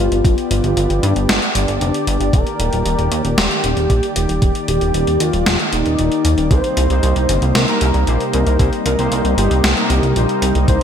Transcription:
Already playing: analog synth pad B3 G4 D5
0.00 soft synth lead F4
0.12 analog synth bass G1, closed hi-hat
0.25 analog synth bass G1, kick, closed hi-hat
0.38 closed hi-hat
0.51 analog synth bass G1, soft synth lead F4, closed hi-hat
0.64 analog synth bass G1, closed hi-hat
0.77 analog synth bass G1, closed hi-hat
0.90 analog synth bass G1, closed hi-hat
1.03 analog synth bass G2, soft synth lead D4, closed hi-hat
1.16 analog synth bass G1, closed hi-hat
1.29 analog synth bass G1, snare, closed hi-hat
1.42 closed hi-hat
1.55 analog synth bass G1, soft synth lead D4, closed hi-hat
1.68 analog synth bass G1, closed hi-hat
1.81 analog synth bass F1, closed hi-hat
1.94 closed hi-hat
2.07 analog synth bass G1, closed hi-hat
2.20 analog synth bass G1, closed hi-hat
2.33 analog synth bass D#1, analog synth pad D#3 A#3, soft synth lead A#4, kick, closed hi-hat
2.47 closed hi-hat
2.60 analog synth bass D#1, closed hi-hat
2.72 analog synth bass D#1, closed hi-hat
2.85 analog synth bass D#1, closed hi-hat
2.99 analog synth bass D#1, closed hi-hat
3.12 analog synth bass D#2, closed hi-hat
3.25 analog synth bass D#1, closed hi-hat
3.38 analog synth bass D#1, soft synth lead G4, snare, closed hi-hat
3.51 closed hi-hat
3.64 analog synth bass D#1, closed hi-hat
3.77 analog synth bass D#1, closed hi-hat
3.90 analog synth bass A#1, kick, closed hi-hat
4.03 closed hi-hat
4.16 analog synth bass D#1, soft synth lead G4, closed hi-hat
4.29 analog synth bass D#1, closed hi-hat
4.42 analog synth bass D#1, kick, closed hi-hat
4.55 closed hi-hat
4.68 analog synth bass D#1, soft synth lead G4, closed hi-hat
4.81 analog synth bass D#1, closed hi-hat
4.94 analog synth bass D#1, closed hi-hat
5.07 analog synth bass D#1, closed hi-hat
5.20 analog synth bass D#2, soft synth lead F4, closed hi-hat
5.33 analog synth bass D#1, closed hi-hat
5.46 analog synth bass D#1, snare, closed hi-hat
5.59 closed hi-hat
5.73 analog synth bass D#1, soft synth lead D#4, closed hi-hat
5.86 analog synth bass D#1, closed hi-hat
5.99 analog synth bass D#1, closed hi-hat
6.12 closed hi-hat
6.25 analog synth bass D#2, closed hi-hat
6.38 analog synth bass D#1, closed hi-hat
6.51 analog synth bass C2, analog synth pad C3 G3 D#4, analog polysynth A#3 D#4 G4 C5, soft synth lead C5, kick, closed hi-hat
6.64 closed hi-hat
6.77 analog synth bass C2, closed hi-hat
6.90 analog synth bass C2, analog polysynth A#3 D#4 G4 C5, closed hi-hat
7.03 analog synth bass C2, closed hi-hat
7.16 analog synth bass C2, closed hi-hat
7.29 analog synth bass G1, analog polysynth A#3 D#4 G4 C5, closed hi-hat
7.42 analog synth bass C2, closed hi-hat
7.55 analog synth bass C2, soft synth lead A#4, snare, closed hi-hat
7.68 analog polysynth A#3 D#4 G4 A#4, closed hi-hat
7.81 analog synth bass C2, closed hi-hat
7.94 analog synth bass C2, closed hi-hat
8.07 analog synth bass A#1, analog polysynth A#3 D#4 G4 C5, closed hi-hat
8.20 closed hi-hat
8.33 analog synth bass C2, soft synth lead A#4, closed hi-hat
8.47 analog synth bass C2, closed hi-hat
8.59 analog synth bass C2, analog polysynth A#3 D#4 G4 C5, kick, closed hi-hat
8.73 closed hi-hat
8.86 analog synth bass C2, soft synth lead A#4, closed hi-hat
8.99 analog synth bass C2, analog polysynth A#3 D#4 G4 C5, closed hi-hat
9.12 analog synth bass C2, closed hi-hat
9.25 analog synth bass C2, closed hi-hat
9.38 analog synth bass G1, analog polysynth A#3 D#4 G4 C5, soft synth lead G4, closed hi-hat
9.51 analog synth bass C2, closed hi-hat
9.64 analog synth bass C2, snare, closed hi-hat
9.77 analog polysynth A#3 D#4 G4 A#4, closed hi-hat
9.90 analog synth bass C2, soft synth lead G4, closed hi-hat
10.03 analog synth bass C2, closed hi-hat
10.16 analog synth bass A#1, analog polysynth A#3 D#4 G4 C5, closed hi-hat
10.29 closed hi-hat
10.42 analog synth bass C2, closed hi-hat
10.55 analog synth bass C2, closed hi-hat
10.68 analog synth bass C2, analog polysynth A#3 D#4 G4 C5, soft synth lead C5, kick, closed hi-hat

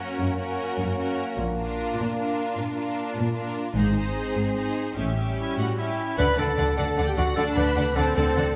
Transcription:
Already playing: french horn section A#3 C#4, viola section C#4, violin section F#4 A#4
0.20 cello section F#2
0.38 viola section C#4, violin section F#4 A#4
0.80 cello section F#2
0.98 viola section C#4, violin section F#4 A#4
1.38 double bass section A#1, cello section A#2, french horn section D4
1.57 viola section D4, violin section F4 A#4
1.98 cello section A#2
2.17 viola section D4, violin section F4 A#4
2.58 cello section A#2
2.77 viola section D4, violin section F4 A#4
3.16 cello section A#2
3.36 viola section D4, violin section F4 A#4
3.75 double bass section G#1, cello section G#2, french horn section G#3 C4, viola section D#4, violin section G#4 C5
3.94 viola section D#4, violin section G#4 C5
4.36 cello section G#2
4.55 viola section D#4, violin section G#4 C5
4.95 double bass section A1, cello section A2, french horn section G3 C#4, viola section C#4, violin section G4 E5
5.16 viola section C#4, violin section G4 E5
5.38 clarinet E4, violin section E5
5.57 cello section A2, clarinet F#4, violin section F#5
5.77 viola section C#4, clarinet E4, violin section G4 E5
6.17 double bass section D2, cello section D3, clarinet B4, violin section D5 F#5 B5
6.36 double bass section D2, cello section D3, clarinet A4, violin section D5 F#5 A5
6.56 double bass section D2, cello section D3, violin section D5 F#5
6.77 double bass section D2, cello section D3, clarinet A4, violin section D5 F#5 A5
6.97 double bass section D2, cello section D3, violin section D5 F#5
7.06 clarinet G4, violin section G5
7.16 double bass section D2, cello section D3, clarinet F#4, violin section D5 F#5
7.36 double bass section D2, cello section D3, viola section D4, clarinet A4, violin section D5 F#5 A5
7.56 double bass section D2, cello section D3, clarinet B4, violin section D5 F#5 B5
7.76 double bass section D2, cello section D3, violin section D5 F#5
7.96 double bass section D2, cello section D3, viola section C4, clarinet A4, violin section D5 F#5 A5
8.16 double bass section D2, cello section D3, clarinet A4, violin section D5 F#5 A5
8.36 double bass section D2, cello section D3, violin section D5 F#5

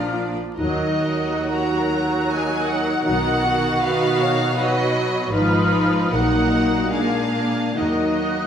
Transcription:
Already playing: double bass section A#1, cello section A#2, french horn section F3 D4, viola section F3 D4, clarinet D4, violin section F4 D5 A#5, flute section F6
0.14 clarinet F4
0.56 cello section D#2, double bass section D#2, french horn section F#3 D#4, viola section F#3 D#4, clarinet D#4, violin section F#4 A#4 D#5, flute section F#6
1.04 viola section F#3
1.49 viola section F#4, violin section A#4 A#5
1.91 viola section F#4
2.29 viola section D#4, violin section F#4 A#4 G#5
2.68 violin section F#5
3.05 double bass section B1, cello section B2, viola section D#3 D#4, french horn section F#3 D#4, violin section F#4 F#5
3.44 viola section F#4
3.82 viola section D#3, violin section B4 F5
4.20 violin section C#5
4.56 viola section F#3 F#4, violin section F#4 B4 D#5
5.32 double bass section G#1, cello section G#2, viola section F3 D#4, french horn section F3 D#4, clarinet D#4, violin section F4 B4, flute section F6
6.11 double bass section A#1, cello section A#2, french horn section F#3 D#4, viola section A#3 D#4, clarinet D#4, violin section F#4 A#4 F#5, flute section F#6
6.90 french horn section G#3 D4, viola section A#3 D4, clarinet D4, violin section G#4 A#4 F5, flute section G#6
7.75 double bass section D#2, cello section D#3, french horn section F#3 D#4, viola section A#3 D#4, clarinet D#4, violin section F#4 A#4 D#5, flute section F#6

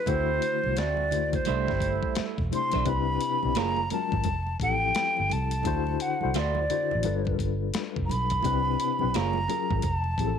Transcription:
Already playing: flute B4
0.06 fingered electric bass D2, tine electric piano D3 A3 E4 F#4 B4, horn section A3 C4 E4, flute C5, kick, closed hi-hat, muted conga, low conga
0.15 tine electric piano C5
0.42 closed hi-hat
0.64 fingered electric bass C2, high conga
0.76 fingered electric bass D2, horn section A3 C4 F#4, flute D5, snare, closed hi-hat, muted conga
0.97 muted conga, high conga
1.11 tine electric piano D3 A3 E4 F#4 C5, closed hi-hat, low conga
1.33 flute C5, kick, closed hi-hat, low conga
1.45 horn section G3 A3 E4, clean electric guitar A3 D4 E4 C5, closed hi-hat, muted conga, high conga
1.49 fingered electric bass C2
1.67 fingered electric bass G1, kick, snare, muted conga
1.80 kick, closed hi-hat, high conga
2.03 kick
2.15 muted fingered electric bass stroke, snare, closed hi-hat, high conga
2.38 fingered electric bass E1, kick, muted conga
2.50 tine electric piano C3 A3 D4 E4 C5, closed hi-hat, high conga
2.55 flute C6
2.72 fingered electric bass B1, clean electric guitar A3 D4 E4 C5, kick, snare, closed hi-hat
2.85 fingered electric bass C2, tine electric piano C3 C4 D4 E4 B4, flute B5, kick, closed hi-hat, muted conga, low conga
3.21 closed hi-hat
3.42 fingered electric bass B1, tine electric piano C3 C4 D4 E4 D5, high conga
3.55 fingered electric bass F#1, clean electric guitar A#3 F4 G#4 C#5, flute A#5, snare, closed hi-hat, muted conga
3.76 muted conga, high conga
3.90 tine electric piano F#3 G#3 C#4 F4 A#4, flute A5, closed hi-hat, low conga
4.12 fingered electric bass G#1, kick, low conga
4.24 fingered electric bass F1, kick, closed hi-hat, muted conga, high conga
4.46 muted conga
4.60 fingered electric bass A1, tine electric piano F3 C4 E4 G4 A4, flute G5, kick, closed hi-hat, high conga
4.95 snare, closed hi-hat, muted conga, high conga
5.17 fingered electric bass G1, muted conga
5.30 fingered electric bass C2, flute A5, closed hi-hat, high conga
5.51 closed hi-hat
5.63 fingered electric bass D2, tine electric piano D3 D4 E4 F#4, kick, closed hi-hat, muted conga, low conga
5.67 tine electric piano C5
5.87 muted conga
6.00 flute F#5, closed hi-hat
6.21 fingered electric bass C2, tine electric piano D3 D4 E4 F#4 C5, high conga
6.34 fingered electric bass D2, clean electric guitar A3 E4 F#4 C5, flute D5, snare, closed hi-hat, muted conga
6.55 muted conga, high conga
6.70 tine electric piano D3 D4 E4 F#4 C5, closed hi-hat, low conga
6.91 fingered electric bass A1, low conga
7.03 tine electric piano G3 D4 F4 A4 B4, closed hi-hat, muted conga, high conga
7.08 fingered electric bass G1
7.25 kick, muted conga
7.39 fingered electric bass G1, kick, closed hi-hat, high conga
7.74 snare, closed hi-hat, muted conga, high conga
7.96 fingered electric bass F1, kick, muted conga
8.06 flute A#5, high conga
8.11 fingered electric bass B1, flute B5, closed hi-hat
8.30 kick, closed hi-hat
8.42 fingered electric bass C2, tine electric piano C3 C4 D4 E4 B4, kick, closed hi-hat, muted conga, low conga
8.65 muted conga
8.80 closed hi-hat
8.99 tine electric piano C3 C4 D4 E4 B4, high conga
9.03 fingered electric bass B1
9.14 fingered electric bass F#1, clean electric guitar A#3 F4 G#4 C#5, flute A#5, snare, closed hi-hat
9.33 muted conga, high conga
9.48 tine electric piano F#3 C#4 F4 G#4 A#4, closed hi-hat, low conga
9.71 fingered electric bass G#1, kick, low conga
9.82 fingered electric bass F1, flute A5, kick, closed hi-hat, muted conga, high conga
10.04 muted conga
10.18 fingered electric bass A1, tine electric piano F3 C4 E4 G4 G#4, kick, closed hi-hat, high conga
10.27 tine electric piano A4

